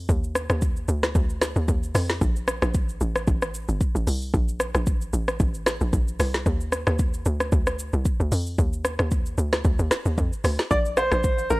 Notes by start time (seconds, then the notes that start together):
0.09 D#2, kick, shaker
0.24 shaker
0.35 cross-stick, shaker
0.50 D#2, cross-stick, shaker
0.62 kick, shaker
0.76 shaker
0.88 D2, shaker
1.03 cross-stick, snare, shaker
1.15 D2, kick, shaker
1.30 shaker
1.42 cross-stick, snare, shaker
1.56 D#2, shaker
1.68 D#2, kick, shaker
1.83 shaker
1.95 F2, cross-stick, open hi-hat, shaker
2.09 snare, shaker
2.21 A#1, kick, shaker
2.36 shaker
2.48 cross-stick, shaker
2.62 A#1, cross-stick, shaker
2.74 kick, shaker
2.89 shaker
3.01 A1, shaker
3.16 cross-stick, shaker
3.27 A1, kick, shaker
3.42 cross-stick, shaker
3.54 shaker
3.69 G1, shaker
3.81 kick, shaker
3.95 A1, shaker
4.07 C2, open hi-hat, shaker
4.22 shaker
4.34 A#1, kick, shaker
4.48 shaker
4.60 cross-stick, shaker
4.75 A#1, cross-stick, shaker
4.86 kick, shaker
5.01 shaker
5.13 A1, shaker
5.28 cross-stick, shaker
5.40 A1, kick, shaker
5.54 shaker
5.66 cross-stick, snare, shaker
5.81 A#1, shaker
5.93 A#1, kick, shaker
6.08 shaker
6.20 C2, cross-stick, open hi-hat, shaker
6.34 snare, shaker
6.46 D#2, kick, shaker
6.61 shaker
6.72 cross-stick, shaker
6.87 D#2, cross-stick, shaker
6.99 kick, shaker
7.14 shaker
7.25 D2, shaker
7.40 cross-stick, shaker
7.52 D2, kick, shaker
7.67 cross-stick, shaker
7.79 shaker
7.93 C2, shaker
8.05 kick, shaker
8.20 D2, shaker
8.32 F2, open hi-hat, shaker
8.46 shaker
8.58 D#2, kick, shaker
8.73 shaker
8.85 cross-stick, shaker
8.99 D#2, cross-stick, shaker
9.11 kick, shaker
9.26 shaker
9.38 D2, shaker
9.53 cross-stick, snare, shaker
9.64 D2, kick, shaker
9.79 D#2, shaker
9.91 cross-stick, snare, shaker
10.06 D#2, shaker
10.18 F2, kick, shaker
10.33 shaker
10.44 D2, cross-stick, open hi-hat, shaker
10.59 snare, shaker
10.71 A#1 D5, kick, shaker
10.85 shaker
10.97 C5, cross-stick, shaker
11.12 A#1, cross-stick, shaker
11.23 kick, shaker
11.38 shaker
11.50 A1 A#4, shaker